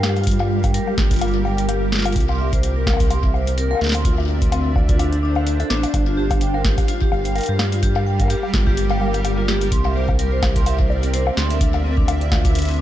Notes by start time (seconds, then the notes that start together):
Already playing: G2 G3 G4 A#4 F5
0.03 G4, snare, high bongo
0.10 high bongo
0.17 closed hi-hat, high bongo
0.22 closed hi-hat, high bongo
0.27 F4, kick, closed hi-hat
0.31 closed hi-hat
0.40 F4, high bongo
0.64 G5, kick, closed hi-hat, high bongo
0.74 A#4, closed hi-hat
0.87 G4, high bongo
0.98 G1, kick, snare
1.11 F4, kick, closed hi-hat
1.14 closed hi-hat
1.16 closed hi-hat
1.19 F4, closed hi-hat
1.21 closed hi-hat, high bongo
1.25 closed hi-hat
1.28 closed hi-hat
1.45 G5, high bongo
1.58 A#4, closed hi-hat
1.69 G4, closed hi-hat, high bongo
1.92 F4, snare
1.96 snare
1.99 snare
2.02 F4, snare, closed hi-hat, high bongo
2.12 C2, kick, closed hi-hat
2.16 C4, closed hi-hat
2.20 closed hi-hat
2.29 C6, high bongo
2.39 E5
2.53 C5, kick, closed hi-hat
2.63 closed hi-hat
2.74 A#4 D5
2.87 A#4, kick, snare, high bongo
2.90 high bongo
2.93 high bongo
2.97 kick, closed hi-hat, high bongo
3.02 E5
3.10 C6, closed hi-hat, high bongo
3.24 E5, kick
3.34 C5, high bongo
3.47 closed hi-hat
3.58 A#4, closed hi-hat
3.71 A#4, high bongo
3.73 high bongo
3.75 high bongo
3.77 high bongo
3.79 D2, snare, high bongo
3.84 snare
3.87 snare
3.89 snare
3.92 C6, snare, closed hi-hat, high bongo
4.05 D4 F4, kick, closed hi-hat
4.18 D4 C5, high bongo
4.42 C4, kick, closed hi-hat
4.52 C4, closed hi-hat, high bongo
4.76 D5, kick, high bongo
4.88 F4 F5, kick, closed hi-hat
4.99 D4, closed hi-hat, high bongo
5.13 closed hi-hat
5.23 D4
5.36 D4, high bongo
5.47 closed hi-hat
5.60 A4, closed hi-hat, high bongo
5.70 A1 D4, snare
5.83 D5, closed hi-hat, high bongo
5.94 G1 G3, kick, closed hi-hat, high bongo
6.07 F4
6.17 G4
6.31 A#4, kick, closed hi-hat, high bongo
6.41 G5, closed hi-hat
6.54 G4 A#4, high bongo
6.65 G4, kick, snare
6.78 kick, closed hi-hat, high bongo
6.88 F4, closed hi-hat
7.01 G4, kick
7.12 G1, high bongo
7.25 G5, closed hi-hat
7.36 A#4, closed hi-hat, high bongo
7.38 closed hi-hat
7.41 closed hi-hat
7.43 closed hi-hat
7.46 G2 G4, closed hi-hat
7.59 snare, high bongo
7.72 F4, closed hi-hat
7.83 G4, kick, closed hi-hat
7.96 high bongo
8.06 G5
8.20 A#4, kick, closed hi-hat, high bongo
8.22 high bongo
8.24 high bongo
8.26 high bongo
8.28 G4, closed hi-hat, high bongo
8.43 high bongo
8.54 G1 F4, kick, snare
8.67 G4, kick
8.77 closed hi-hat
8.90 G5, high bongo
9.01 A#4, high bongo
9.08 high bongo
9.14 G4, closed hi-hat, high bongo
9.19 high bongo
9.25 closed hi-hat, high bongo
9.38 F4
9.48 G4, snare
9.61 closed hi-hat
9.72 C2 C4 C6, kick, closed hi-hat
9.85 E5, high bongo
9.95 C5 D5
10.09 kick, high bongo
10.19 A#4, closed hi-hat
10.32 C5
10.43 E5, kick, snare, high bongo
10.56 C6, kick, closed hi-hat
10.66 E5, closed hi-hat, high bongo
10.79 C5, kick
10.90 high bongo
11.03 A#4, closed hi-hat
11.14 C5, closed hi-hat
11.27 high bongo
11.37 D2 C6, snare
11.50 E5, closed hi-hat
11.61 D4, kick, closed hi-hat
11.74 high bongo
11.84 C4
11.96 D4 F5, kick
12.08 C5, closed hi-hat, high bongo
12.21 D5, closed hi-hat
12.32 F4, kick, snare, high bongo
12.35 high bongo
12.38 high bongo
12.42 D4, kick, closed hi-hat, high bongo
12.45 high bongo
12.47 high bongo
12.50 high bongo
12.55 closed hi-hat
12.59 closed hi-hat
12.62 closed hi-hat
12.65 C4, closed hi-hat
12.69 closed hi-hat
12.71 closed hi-hat